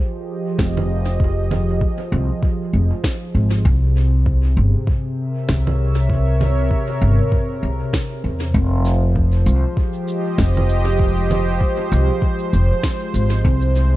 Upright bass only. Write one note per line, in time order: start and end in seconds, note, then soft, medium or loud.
0.59 1.79 F1 medium
2.12 2.28 C2 medium
2.73 2.90 F1 medium
3.35 3.62 G#1 medium
3.65 4.55 C2 medium
4.57 4.73 G1 medium
5.49 6.69 C2 medium
7.02 7.18 G1 medium
7.63 7.79 C2 medium
8.24 8.52 E2 medium
8.54 9.44 F1 medium
9.46 9.63 C2 medium
10.38 11.59 F1 medium
11.92 12.08 C2 medium
12.53 12.69 F1 medium
13.14 13.42 G#1 medium
13.45 13.96 C2 medium